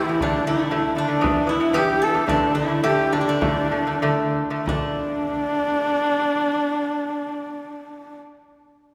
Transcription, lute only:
0.08 0.18 A2 medium
0.08 0.19 E3 medium
0.22 0.42 D3 medium
0.22 0.42 A3 loud
0.46 0.56 D3 medium
0.46 0.57 A3 medium
0.59 0.69 D3 medium
0.59 0.69 A3 medium
0.71 0.91 D3 loud
0.71 0.92 A3 loud
0.96 1.07 D3 medium
0.96 1.07 A3 medium
1.08 1.19 D3 medium
1.08 1.19 A3 medium
1.21 1.42 E3 medium
1.21 1.42 B3 loud
1.47 1.58 E3 medium
1.47 1.58 B3 medium
1.60 1.71 E3 medium
1.60 1.71 B3 medium
1.73 2.06 E3 loud
1.73 2.07 B3 loud
2.14 2.25 E3 medium
2.14 2.25 B3 medium
2.27 2.50 D3 medium
2.27 2.50 A3 medium
2.54 2.66 D3 medium
2.54 2.67 A3 medium
2.68 2.80 D3 medium
2.68 2.81 A3 medium
2.83 3.07 D3 medium
2.83 3.07 A3 loud
3.12 3.24 D3 medium
3.12 3.25 A3 medium
3.27 3.39 D3 medium
3.27 3.39 A3 medium
3.41 3.66 D3 medium
3.41 3.66 A3 loud
3.71 3.84 D3 medium
3.71 3.84 A3 medium
3.87 4.00 D3 medium
3.87 4.00 A3 medium
4.02 4.41 D3 loud
4.02 4.41 A3 loud
4.50 4.64 D3 medium
4.50 4.64 A3 medium
4.66 8.16 D3 medium
4.66 8.20 A3 medium

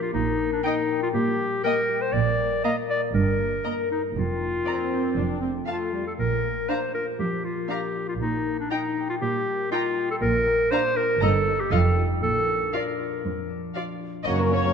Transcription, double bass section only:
0.13 0.53 A#1 medium
2.14 2.54 A#1 medium
3.14 3.54 G1 medium
4.15 4.56 F1 soft
5.17 5.58 F1 soft
6.19 6.59 A#1 soft
8.20 8.60 A#1 soft
10.21 10.61 A#1 medium
11.21 11.61 G1 medium
11.72 12.12 F1 medium
12.22 12.63 A#1 soft
14.25 14.70 F#1 soft

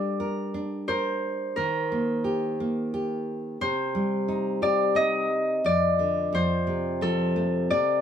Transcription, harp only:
0.00 1.03 A4 medium
0.00 1.35 D5 medium
0.88 2.86 C5 medium
1.56 3.68 A#4 medium
3.61 5.59 C5 medium
4.63 5.02 D5 medium
4.96 5.72 D#5 loud
5.66 7.50 D5 medium
6.35 8.01 C5 medium
7.02 8.01 A4 medium
7.70 8.01 D5 medium

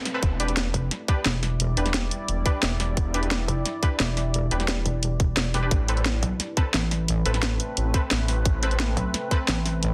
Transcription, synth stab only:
0.14 0.21 C4 medium
0.14 0.21 A4 medium
0.14 0.21 B4 medium
0.40 1.06 D4 medium
0.40 1.06 G4 medium
0.40 1.06 B4 medium
1.08 1.15 D4 medium
1.08 1.15 G4 medium
1.08 1.15 B4 medium
1.77 2.44 D4 medium
1.77 2.43 G4 medium
1.77 2.43 B4 medium
2.46 2.52 D4 medium
2.46 2.52 G4 medium
2.46 2.52 B4 loud
3.14 3.81 D4 medium
3.14 3.81 G4 medium
3.14 3.81 B4 medium
3.83 3.90 D4 medium
3.83 3.90 G4 medium
3.83 3.90 B4 medium
4.51 5.18 D4 medium
4.51 5.18 G4 medium
4.51 5.18 B4 medium
5.54 5.61 D4 medium
5.54 5.61 G4 medium
5.54 5.61 B4 medium
5.63 5.70 D4 medium
5.63 5.70 G4 medium
5.63 5.70 B4 medium
5.88 6.55 C4 medium
5.88 6.55 A4 medium
5.88 6.55 B4 medium
6.57 6.64 C4 medium
6.57 6.64 A4 medium
6.57 6.64 B4 medium
7.25 7.92 C4 medium
7.25 7.92 A4 medium
7.25 7.92 B4 medium
7.94 8.01 C4 medium
7.94 8.01 A4 medium
7.94 8.01 B4 medium
8.63 9.29 C4 medium
8.63 9.29 A4 medium
8.63 9.29 B4 medium
9.31 9.38 C4 medium
9.31 9.38 A4 medium
9.31 9.38 B4 loud

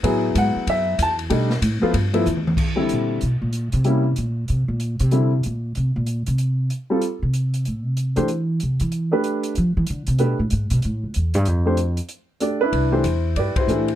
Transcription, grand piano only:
0.03 0.91 F#3 medium
0.03 0.91 B3 medium
0.03 0.92 E4 medium
0.03 0.92 G#4 medium
0.38 0.66 F#5 medium
0.70 0.98 E5 medium
1.03 1.13 A5 medium
1.30 1.48 G3 medium
1.30 1.48 A3 medium
1.30 1.48 D4 medium
1.30 1.48 D#4 medium
1.82 1.92 F3 medium
1.82 1.93 A3 medium
1.82 1.93 B3 medium
1.82 1.93 F4 medium
2.13 2.24 F3 medium
2.13 2.24 A3 medium
2.13 2.25 B3 medium
2.13 2.25 E4 medium
2.76 3.18 D3 soft
2.76 3.18 G3 soft
2.76 3.18 C4 soft
2.76 3.18 E4 medium
3.85 4.02 G3 medium
3.85 4.03 A#3 soft
3.85 4.03 C#4 soft
3.85 4.03 E4 medium
5.11 5.29 D3 soft
5.11 5.29 G3 soft
5.11 5.30 C4 soft
5.11 5.30 E4 medium
6.90 7.01 G3 medium
6.90 7.01 C4 soft
6.90 7.01 F4 soft
6.90 7.01 A4 medium
8.16 8.27 A3 medium
8.16 8.27 D4 medium
8.16 8.28 G4 medium
8.16 8.28 C5 medium
9.12 9.53 A3 medium
9.12 9.53 D4 medium
9.12 9.54 G4 medium
9.12 9.54 B4 medium
10.19 10.37 A3 soft
10.19 10.37 D4 soft
10.19 10.37 G4 soft
10.19 10.37 B4 medium
11.65 11.76 A3 medium
11.65 11.77 D4 medium
11.65 11.77 G4 medium
11.65 11.77 C5 medium
12.40 12.59 A3 medium
12.40 12.59 D4 soft
12.40 12.59 G4 soft
12.40 12.59 D5 medium
12.61 12.91 D4 medium
12.61 12.93 E4 medium
12.61 12.90 B4 medium
12.91 13.03 E3 medium
12.91 13.03 A3 medium
12.91 13.03 D4 soft
12.91 13.53 E4 soft
12.91 13.03 G4 medium
12.91 13.38 C5 medium
13.37 13.58 G4 soft
13.37 13.95 B4 soft
13.37 13.55 D5 medium
13.56 13.68 E4 soft
13.56 13.95 G4 soft
13.56 13.95 C5 medium
13.68 13.86 E3 soft
13.68 13.86 A3 soft
13.68 13.86 D4 soft
13.68 13.86 E4 medium

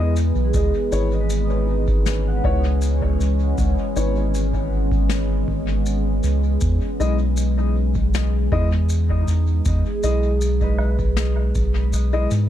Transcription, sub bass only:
0.00 0.32 E2 loud
0.35 0.52 B1 medium
0.54 0.71 C#2 loud
0.92 2.41 G#1 loud
2.44 3.17 C#2 loud
3.20 3.54 C#2 medium
3.58 3.75 C#2 loud
3.96 5.44 G#1 loud
5.48 6.20 G#1 medium
6.24 6.57 C#2 loud
6.62 6.79 E2 loud
7.00 8.48 B1 loud
8.52 9.24 E2 loud
9.28 9.61 E2 medium
9.66 9.83 E2 loud
10.03 11.52 B1 loud
11.55 11.93 B1 medium
11.93 12.27 B1 loud
12.31 12.49 G#2 loud

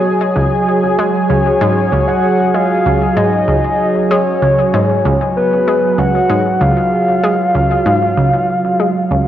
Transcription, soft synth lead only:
1.29 2.09 C#5 loud
2.07 2.56 F#5 loud
2.54 3.18 F5 loud
3.17 4.11 D#5 loud
4.11 5.01 C#5 medium
5.36 6.01 B4 loud
5.99 6.63 F#5 loud
6.62 9.28 F5 loud

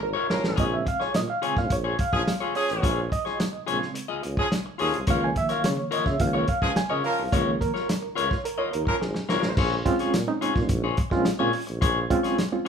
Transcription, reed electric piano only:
0.03 0.32 A#4 medium
0.31 0.44 C#5 medium
0.58 0.96 C#3 medium
0.58 0.96 G#3 medium
0.58 0.96 C4 medium
0.58 0.74 D#5 loud
0.74 0.88 E5 medium
0.88 1.02 F5 loud
1.02 1.16 C#5 medium
1.16 1.30 D#5 loud
1.30 1.44 F5 medium
1.43 1.68 C#3 soft
1.43 1.68 G#3 soft
1.43 1.69 C4 medium
1.43 1.57 G#5 medium
1.58 1.72 F5 loud
1.72 2.01 C#5 medium
2.00 2.58 F5 loud
2.56 3.14 C#5 medium
3.12 3.64 D#5 loud
3.67 4.05 C#3 medium
3.67 4.05 G#3 soft
3.67 4.05 C4 medium
5.08 6.18 D#3 medium
5.08 6.19 F3 medium
5.08 6.20 A#3 medium
5.08 5.24 F5 loud
5.24 5.36 G#5 loud
5.37 5.51 E5 loud
5.52 5.66 F5 loud
5.66 5.94 C#5 loud
5.93 6.07 D#5 medium
6.07 6.21 E5 medium
6.20 6.45 D#3 medium
6.20 6.46 F3 soft
6.20 6.46 A#3 medium
6.20 6.35 F5 medium
6.35 6.49 C#5 medium
6.49 6.78 F5 loud
6.77 6.91 G#5 loud
6.90 7.05 D#5 medium
7.04 7.33 F5 loud
7.32 7.70 D#3 medium
7.32 7.70 F3 medium
7.32 7.70 A#3 medium
7.32 7.62 C#5 loud
7.61 8.19 A#4 loud
8.16 8.46 C#5 medium
8.45 8.60 A#4 medium
8.58 8.73 C#5 loud
8.73 9.02 A#4 medium
9.02 9.28 G#4 medium
9.85 10.13 G#3 loud
9.85 10.13 C4 loud
9.85 10.14 C#4 loud
9.85 10.14 F4 loud
10.28 10.84 G#3 medium
10.28 10.84 C4 medium
10.28 10.84 C#4 medium
10.28 10.84 D#4 loud
11.11 11.30 G#3 loud
11.11 11.30 C4 loud
11.11 11.31 C#4 loud
11.11 11.31 F4 loud
11.40 11.49 G#3 medium
11.40 11.49 C4 medium
11.40 11.49 C#4 medium
11.40 11.49 F4 loud
11.55 11.61 F4 soft
12.10 12.38 G#3 loud
12.10 12.38 C4 loud
12.10 12.38 C#4 loud
12.10 12.38 F4 loud
12.52 12.68 G#3 medium
12.52 12.68 C4 medium
12.52 12.68 C#4 medium
12.52 12.68 F4 loud

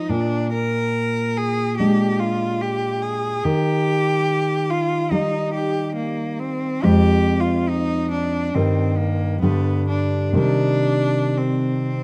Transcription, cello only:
0.00 0.11 D#4 soft
0.09 0.52 D4 medium
0.53 1.39 A#4 medium
1.37 1.77 G#4 medium
1.77 2.21 G4 medium
2.19 2.63 F4 medium
2.61 3.04 G4 medium
3.02 3.46 G#4 medium
3.44 4.71 G4 medium
4.70 5.12 F4 medium
5.11 5.53 D#4 medium
5.54 5.95 G4 medium
5.96 6.41 A#3 medium
6.39 6.85 C4 medium
6.83 7.42 G4 medium
7.40 7.70 F4 medium
7.69 8.10 D#4 medium
8.11 8.56 D4 medium
8.54 8.99 C4 soft
8.97 9.41 A#3 soft
9.41 9.88 B3 soft
9.88 10.37 D4 soft
10.38 11.39 D4 medium
11.37 12.03 C4 soft

